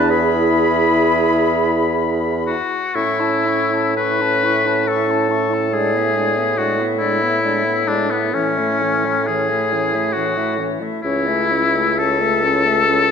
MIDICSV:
0, 0, Header, 1, 6, 480
1, 0, Start_track
1, 0, Key_signature, 3, "major"
1, 0, Tempo, 947867
1, 56, Time_signature, 6, 3, 24, 8
1, 1494, Tempo, 1015228
1, 1974, Tempo, 895522
1, 2454, Tempo, 855920
1, 3894, Tempo, 921659
1, 4854, Tempo, 877193
1, 5814, Tempo, 927357
1, 6895, End_track
2, 0, Start_track
2, 0, Title_t, "Flute"
2, 0, Program_c, 0, 73
2, 54, Note_on_c, 0, 83, 91
2, 1289, Note_off_c, 0, 83, 0
2, 1487, Note_on_c, 0, 85, 70
2, 1612, Note_on_c, 0, 81, 62
2, 1619, Note_off_c, 0, 85, 0
2, 1740, Note_on_c, 0, 85, 58
2, 1747, Note_off_c, 0, 81, 0
2, 1865, Note_on_c, 0, 81, 57
2, 1872, Note_off_c, 0, 85, 0
2, 1979, Note_off_c, 0, 81, 0
2, 1983, Note_on_c, 0, 85, 54
2, 2106, Note_on_c, 0, 81, 60
2, 2114, Note_off_c, 0, 85, 0
2, 2233, Note_on_c, 0, 85, 60
2, 2241, Note_off_c, 0, 81, 0
2, 2352, Note_on_c, 0, 81, 58
2, 2360, Note_off_c, 0, 85, 0
2, 2462, Note_off_c, 0, 81, 0
2, 2467, Note_on_c, 0, 85, 59
2, 2594, Note_on_c, 0, 81, 56
2, 2602, Note_off_c, 0, 85, 0
2, 2706, Note_on_c, 0, 85, 54
2, 2714, Note_off_c, 0, 81, 0
2, 2833, Note_on_c, 0, 81, 55
2, 2842, Note_off_c, 0, 85, 0
2, 2946, Note_off_c, 0, 81, 0
2, 2959, Note_on_c, 0, 74, 66
2, 3078, Note_on_c, 0, 76, 57
2, 3086, Note_off_c, 0, 74, 0
2, 3197, Note_on_c, 0, 74, 59
2, 3205, Note_off_c, 0, 76, 0
2, 3312, Note_on_c, 0, 76, 51
2, 3321, Note_off_c, 0, 74, 0
2, 3417, Note_off_c, 0, 76, 0
2, 3421, Note_on_c, 0, 74, 53
2, 3542, Note_on_c, 0, 76, 59
2, 3551, Note_off_c, 0, 74, 0
2, 3655, Note_on_c, 0, 74, 62
2, 3664, Note_off_c, 0, 76, 0
2, 3781, Note_on_c, 0, 76, 56
2, 3790, Note_off_c, 0, 74, 0
2, 3892, Note_off_c, 0, 76, 0
2, 3895, Note_on_c, 0, 74, 55
2, 4012, Note_on_c, 0, 76, 55
2, 4020, Note_off_c, 0, 74, 0
2, 4133, Note_on_c, 0, 74, 52
2, 4141, Note_off_c, 0, 76, 0
2, 4249, Note_on_c, 0, 76, 54
2, 4257, Note_off_c, 0, 74, 0
2, 4362, Note_off_c, 0, 76, 0
2, 4365, Note_on_c, 0, 73, 68
2, 4490, Note_on_c, 0, 76, 60
2, 4498, Note_off_c, 0, 73, 0
2, 4603, Note_on_c, 0, 73, 61
2, 4611, Note_off_c, 0, 76, 0
2, 4739, Note_on_c, 0, 76, 58
2, 4746, Note_off_c, 0, 73, 0
2, 4844, Note_off_c, 0, 76, 0
2, 4847, Note_on_c, 0, 73, 57
2, 4973, Note_on_c, 0, 76, 54
2, 4981, Note_off_c, 0, 73, 0
2, 5096, Note_on_c, 0, 73, 60
2, 5104, Note_off_c, 0, 76, 0
2, 5221, Note_on_c, 0, 76, 57
2, 5229, Note_off_c, 0, 73, 0
2, 5325, Note_off_c, 0, 76, 0
2, 5328, Note_on_c, 0, 73, 59
2, 5455, Note_on_c, 0, 76, 57
2, 5464, Note_off_c, 0, 73, 0
2, 5579, Note_on_c, 0, 73, 54
2, 5587, Note_off_c, 0, 76, 0
2, 5702, Note_on_c, 0, 76, 60
2, 5710, Note_off_c, 0, 73, 0
2, 5820, Note_off_c, 0, 76, 0
2, 5823, Note_on_c, 0, 73, 70
2, 5944, Note_on_c, 0, 76, 59
2, 5952, Note_off_c, 0, 73, 0
2, 6063, Note_on_c, 0, 73, 54
2, 6071, Note_off_c, 0, 76, 0
2, 6191, Note_on_c, 0, 76, 55
2, 6198, Note_off_c, 0, 73, 0
2, 6307, Note_off_c, 0, 76, 0
2, 6312, Note_on_c, 0, 73, 55
2, 6428, Note_on_c, 0, 76, 58
2, 6436, Note_off_c, 0, 73, 0
2, 6547, Note_on_c, 0, 73, 64
2, 6554, Note_off_c, 0, 76, 0
2, 6666, Note_on_c, 0, 76, 53
2, 6674, Note_off_c, 0, 73, 0
2, 6779, Note_off_c, 0, 76, 0
2, 6783, Note_on_c, 0, 73, 58
2, 6895, Note_off_c, 0, 73, 0
2, 6895, End_track
3, 0, Start_track
3, 0, Title_t, "Oboe"
3, 0, Program_c, 1, 68
3, 0, Note_on_c, 1, 81, 85
3, 51, Note_on_c, 1, 83, 81
3, 59, Note_off_c, 1, 81, 0
3, 1243, Note_off_c, 1, 83, 0
3, 1246, Note_on_c, 1, 66, 83
3, 1496, Note_on_c, 1, 64, 95
3, 1503, Note_off_c, 1, 66, 0
3, 1972, Note_off_c, 1, 64, 0
3, 1975, Note_on_c, 1, 71, 104
3, 2463, Note_on_c, 1, 69, 75
3, 2472, Note_off_c, 1, 71, 0
3, 2944, Note_on_c, 1, 68, 95
3, 2952, Note_off_c, 1, 69, 0
3, 3417, Note_on_c, 1, 66, 98
3, 3426, Note_off_c, 1, 68, 0
3, 3580, Note_off_c, 1, 66, 0
3, 3648, Note_on_c, 1, 64, 106
3, 4125, Note_on_c, 1, 62, 95
3, 4133, Note_off_c, 1, 64, 0
3, 4247, Note_on_c, 1, 59, 80
3, 4255, Note_off_c, 1, 62, 0
3, 4366, Note_on_c, 1, 61, 99
3, 4374, Note_off_c, 1, 59, 0
3, 4852, Note_on_c, 1, 68, 94
3, 4860, Note_off_c, 1, 61, 0
3, 5322, Note_on_c, 1, 66, 82
3, 5330, Note_off_c, 1, 68, 0
3, 5649, Note_off_c, 1, 66, 0
3, 5815, Note_on_c, 1, 64, 104
3, 6309, Note_on_c, 1, 69, 107
3, 6317, Note_off_c, 1, 64, 0
3, 6895, Note_off_c, 1, 69, 0
3, 6895, End_track
4, 0, Start_track
4, 0, Title_t, "Clarinet"
4, 0, Program_c, 2, 71
4, 53, Note_on_c, 2, 68, 100
4, 1224, Note_off_c, 2, 68, 0
4, 1497, Note_on_c, 2, 61, 62
4, 1618, Note_on_c, 2, 64, 56
4, 1625, Note_off_c, 2, 61, 0
4, 1741, Note_on_c, 2, 61, 61
4, 1748, Note_off_c, 2, 64, 0
4, 1861, Note_on_c, 2, 64, 53
4, 1868, Note_off_c, 2, 61, 0
4, 1973, Note_off_c, 2, 64, 0
4, 1976, Note_on_c, 2, 61, 60
4, 2101, Note_on_c, 2, 64, 60
4, 2109, Note_off_c, 2, 61, 0
4, 2223, Note_on_c, 2, 61, 59
4, 2231, Note_off_c, 2, 64, 0
4, 2338, Note_on_c, 2, 64, 52
4, 2346, Note_off_c, 2, 61, 0
4, 2452, Note_off_c, 2, 64, 0
4, 2456, Note_on_c, 2, 61, 59
4, 2572, Note_on_c, 2, 64, 66
4, 2580, Note_off_c, 2, 61, 0
4, 2693, Note_on_c, 2, 61, 56
4, 2701, Note_off_c, 2, 64, 0
4, 2809, Note_on_c, 2, 64, 55
4, 2817, Note_off_c, 2, 61, 0
4, 2925, Note_off_c, 2, 64, 0
4, 2928, Note_on_c, 2, 62, 55
4, 3050, Note_on_c, 2, 64, 63
4, 3059, Note_off_c, 2, 62, 0
4, 3181, Note_on_c, 2, 62, 61
4, 3190, Note_off_c, 2, 64, 0
4, 3294, Note_on_c, 2, 64, 61
4, 3303, Note_off_c, 2, 62, 0
4, 3408, Note_off_c, 2, 64, 0
4, 3412, Note_on_c, 2, 62, 54
4, 3529, Note_on_c, 2, 64, 58
4, 3537, Note_off_c, 2, 62, 0
4, 3655, Note_on_c, 2, 62, 60
4, 3663, Note_off_c, 2, 64, 0
4, 3778, Note_on_c, 2, 64, 61
4, 3787, Note_off_c, 2, 62, 0
4, 3894, Note_off_c, 2, 64, 0
4, 3898, Note_on_c, 2, 62, 63
4, 4008, Note_on_c, 2, 64, 57
4, 4016, Note_off_c, 2, 62, 0
4, 4128, Note_on_c, 2, 62, 54
4, 4136, Note_off_c, 2, 64, 0
4, 4246, Note_on_c, 2, 64, 54
4, 4254, Note_off_c, 2, 62, 0
4, 4365, Note_off_c, 2, 64, 0
4, 4368, Note_on_c, 2, 61, 62
4, 4490, Note_on_c, 2, 64, 57
4, 4498, Note_off_c, 2, 61, 0
4, 4619, Note_on_c, 2, 61, 62
4, 4627, Note_off_c, 2, 64, 0
4, 4734, Note_on_c, 2, 64, 53
4, 4742, Note_off_c, 2, 61, 0
4, 4854, Note_off_c, 2, 64, 0
4, 4860, Note_on_c, 2, 61, 51
4, 4982, Note_on_c, 2, 64, 55
4, 4990, Note_off_c, 2, 61, 0
4, 5103, Note_on_c, 2, 61, 56
4, 5111, Note_off_c, 2, 64, 0
4, 5213, Note_on_c, 2, 64, 58
4, 5221, Note_off_c, 2, 61, 0
4, 5331, Note_off_c, 2, 64, 0
4, 5336, Note_on_c, 2, 61, 60
4, 5454, Note_on_c, 2, 64, 67
4, 5462, Note_off_c, 2, 61, 0
4, 5570, Note_on_c, 2, 61, 55
4, 5579, Note_off_c, 2, 64, 0
4, 5691, Note_on_c, 2, 64, 57
4, 5699, Note_off_c, 2, 61, 0
4, 5816, Note_off_c, 2, 64, 0
4, 5821, Note_on_c, 2, 64, 59
4, 5941, Note_on_c, 2, 61, 66
4, 5949, Note_off_c, 2, 64, 0
4, 6064, Note_on_c, 2, 64, 60
4, 6072, Note_off_c, 2, 61, 0
4, 6188, Note_on_c, 2, 61, 59
4, 6196, Note_off_c, 2, 64, 0
4, 6306, Note_off_c, 2, 61, 0
4, 6310, Note_on_c, 2, 64, 57
4, 6420, Note_on_c, 2, 61, 54
4, 6428, Note_off_c, 2, 64, 0
4, 6541, Note_on_c, 2, 64, 59
4, 6549, Note_off_c, 2, 61, 0
4, 6655, Note_on_c, 2, 61, 53
4, 6662, Note_off_c, 2, 64, 0
4, 6771, Note_off_c, 2, 61, 0
4, 6774, Note_on_c, 2, 64, 57
4, 6895, Note_off_c, 2, 64, 0
4, 6895, End_track
5, 0, Start_track
5, 0, Title_t, "French horn"
5, 0, Program_c, 3, 60
5, 61, Note_on_c, 3, 64, 92
5, 1293, Note_off_c, 3, 64, 0
5, 1503, Note_on_c, 3, 64, 65
5, 1617, Note_on_c, 3, 61, 58
5, 1624, Note_off_c, 3, 64, 0
5, 1735, Note_on_c, 3, 64, 50
5, 1743, Note_off_c, 3, 61, 0
5, 1855, Note_on_c, 3, 61, 56
5, 1862, Note_off_c, 3, 64, 0
5, 1974, Note_off_c, 3, 61, 0
5, 1977, Note_on_c, 3, 64, 60
5, 2107, Note_on_c, 3, 61, 57
5, 2115, Note_off_c, 3, 64, 0
5, 2228, Note_on_c, 3, 64, 70
5, 2236, Note_off_c, 3, 61, 0
5, 2346, Note_on_c, 3, 61, 58
5, 2354, Note_off_c, 3, 64, 0
5, 2459, Note_off_c, 3, 61, 0
5, 2461, Note_on_c, 3, 64, 56
5, 2574, Note_on_c, 3, 61, 55
5, 2582, Note_off_c, 3, 64, 0
5, 2694, Note_on_c, 3, 64, 57
5, 2702, Note_off_c, 3, 61, 0
5, 2819, Note_on_c, 3, 61, 50
5, 2828, Note_off_c, 3, 64, 0
5, 2928, Note_off_c, 3, 61, 0
5, 2932, Note_on_c, 3, 56, 58
5, 3055, Note_on_c, 3, 59, 54
5, 3063, Note_off_c, 3, 56, 0
5, 3168, Note_on_c, 3, 56, 54
5, 3177, Note_off_c, 3, 59, 0
5, 3293, Note_on_c, 3, 59, 51
5, 3301, Note_off_c, 3, 56, 0
5, 3410, Note_off_c, 3, 59, 0
5, 3414, Note_on_c, 3, 56, 59
5, 3532, Note_on_c, 3, 59, 58
5, 3541, Note_off_c, 3, 56, 0
5, 3652, Note_on_c, 3, 56, 64
5, 3660, Note_off_c, 3, 59, 0
5, 3775, Note_on_c, 3, 59, 59
5, 3784, Note_off_c, 3, 56, 0
5, 3896, Note_off_c, 3, 59, 0
5, 3899, Note_on_c, 3, 56, 57
5, 4006, Note_on_c, 3, 59, 56
5, 4014, Note_off_c, 3, 56, 0
5, 4125, Note_on_c, 3, 56, 68
5, 4132, Note_off_c, 3, 59, 0
5, 4247, Note_on_c, 3, 59, 53
5, 4255, Note_off_c, 3, 56, 0
5, 4367, Note_off_c, 3, 59, 0
5, 4372, Note_on_c, 3, 52, 65
5, 4497, Note_on_c, 3, 57, 55
5, 4505, Note_off_c, 3, 52, 0
5, 4620, Note_on_c, 3, 52, 58
5, 4628, Note_off_c, 3, 57, 0
5, 4742, Note_on_c, 3, 57, 51
5, 4750, Note_off_c, 3, 52, 0
5, 4858, Note_off_c, 3, 57, 0
5, 4862, Note_on_c, 3, 52, 57
5, 4986, Note_on_c, 3, 57, 53
5, 4994, Note_off_c, 3, 52, 0
5, 5108, Note_on_c, 3, 52, 60
5, 5116, Note_off_c, 3, 57, 0
5, 5222, Note_on_c, 3, 57, 59
5, 5230, Note_off_c, 3, 52, 0
5, 5335, Note_off_c, 3, 57, 0
5, 5340, Note_on_c, 3, 52, 64
5, 5455, Note_on_c, 3, 57, 56
5, 5463, Note_off_c, 3, 52, 0
5, 5569, Note_on_c, 3, 52, 64
5, 5577, Note_off_c, 3, 57, 0
5, 5695, Note_on_c, 3, 57, 56
5, 5703, Note_off_c, 3, 52, 0
5, 5818, Note_off_c, 3, 57, 0
5, 5824, Note_on_c, 3, 61, 69
5, 5947, Note_on_c, 3, 57, 59
5, 5955, Note_off_c, 3, 61, 0
5, 6066, Note_on_c, 3, 61, 52
5, 6074, Note_off_c, 3, 57, 0
5, 6191, Note_on_c, 3, 57, 58
5, 6198, Note_off_c, 3, 61, 0
5, 6307, Note_off_c, 3, 57, 0
5, 6311, Note_on_c, 3, 61, 61
5, 6427, Note_on_c, 3, 57, 60
5, 6434, Note_off_c, 3, 61, 0
5, 6542, Note_on_c, 3, 61, 64
5, 6549, Note_off_c, 3, 57, 0
5, 6658, Note_on_c, 3, 57, 62
5, 6666, Note_off_c, 3, 61, 0
5, 6775, Note_off_c, 3, 57, 0
5, 6778, Note_on_c, 3, 61, 58
5, 6895, Note_off_c, 3, 61, 0
5, 6895, End_track
6, 0, Start_track
6, 0, Title_t, "Bassoon"
6, 0, Program_c, 4, 70
6, 0, Note_on_c, 4, 40, 98
6, 1289, Note_off_c, 4, 40, 0
6, 1497, Note_on_c, 4, 45, 74
6, 4346, Note_off_c, 4, 45, 0
6, 4366, Note_on_c, 4, 45, 67
6, 5632, Note_off_c, 4, 45, 0
6, 5820, Note_on_c, 4, 37, 66
6, 6895, Note_off_c, 4, 37, 0
6, 6895, End_track
0, 0, End_of_file